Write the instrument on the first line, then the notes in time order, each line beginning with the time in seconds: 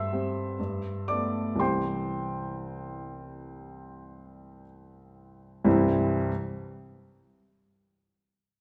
grand piano
Already playing: G2 E5 C6 E6
0.12 G3 C4
0.60 G2
1.08 A3 B3 D5 D6
1.56 C2 E3 G3 C4 C6
1.60 C5 G5
5.64 C2 G2 E3 G3 C4 E4